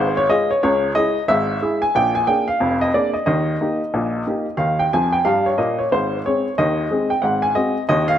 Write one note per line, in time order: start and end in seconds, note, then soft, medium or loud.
0.00 0.25 G#1 medium
0.00 0.25 G#2 medium
0.00 0.14 C5 medium
0.17 0.30 C#5 medium
0.29 0.48 G#3 soft
0.29 0.48 F4 soft
0.29 0.49 G#4 soft
0.29 0.49 D#5 medium
0.51 0.62 C#5 medium
0.63 0.91 C#2 medium
0.63 0.91 C#3 medium
0.63 0.94 C#5 medium
0.95 1.14 G#3 soft
0.95 1.14 E4 soft
0.95 1.15 G#4 soft
0.95 1.22 D#5 medium
1.28 1.56 G#1 medium
1.28 1.57 G#2 medium
1.28 1.78 E5 medium
1.62 1.80 G#3 soft
1.62 1.80 E4 soft
1.62 1.80 G#4 soft
1.82 1.95 G#5 medium
1.95 2.23 A#1 medium
1.95 2.23 A#2 medium
1.95 2.15 G5 medium
2.15 2.28 G#5 medium
2.27 2.46 A#3 soft
2.27 2.46 D4 soft
2.27 2.46 G#4 soft
2.27 2.47 G5 medium
2.48 2.74 F5 medium
2.60 2.89 F1 medium
2.60 2.89 F2 medium
2.81 2.94 D#5 medium
2.94 3.12 A#3 soft
2.94 3.13 D4 soft
2.94 3.13 G#4 soft
2.94 3.14 D5 medium
3.14 3.25 D#5 medium
3.26 3.54 D#2 medium
3.26 3.55 D#3 medium
3.26 4.55 D#5 medium
3.61 3.79 A#3 soft
3.61 3.79 D#4 soft
3.61 3.79 G4 soft
3.94 4.21 A#1 medium
3.94 4.22 A#2 medium
4.27 4.45 A#3 soft
4.27 4.45 D#4 soft
4.27 4.45 G4 soft
4.57 4.86 D#2 soft
4.57 4.86 D#3 medium
4.57 4.78 F5 medium
4.79 4.92 G5 medium
4.93 5.18 F2 medium
4.93 5.18 F3 medium
4.93 5.12 G#5 medium
5.13 5.25 G5 medium
5.25 5.50 G2 medium
5.25 5.50 G3 medium
5.25 5.45 F5 medium
5.46 5.59 C#5 medium
5.58 5.83 A#2 medium
5.58 5.83 A#3 medium
5.58 5.78 D#5 medium
5.79 5.92 C#5 medium
5.92 6.19 G#1 soft
5.92 6.20 G#2 medium
5.92 6.18 C5 medium
6.26 6.44 G#3 soft
6.26 6.44 C4 soft
6.26 6.44 G#4 soft
6.26 6.52 C#5 medium
6.58 6.86 D#2 medium
6.58 6.86 D#3 medium
6.58 7.08 D#5 medium
6.91 7.09 G#3 soft
6.91 7.09 C4 soft
6.91 7.09 G#4 soft
7.10 7.23 G5 medium
7.22 7.51 G#1 medium
7.22 7.51 G#2 medium
7.22 7.42 F#5 medium
7.42 7.56 G#5 medium
7.55 7.74 G#3 soft
7.55 7.74 C4 soft
7.55 7.74 F#4 soft
7.55 7.82 D#5 medium
7.89 8.17 D#2 medium
7.89 8.17 D#3 medium
7.89 8.08 D#5 medium
8.08 8.18 F5 medium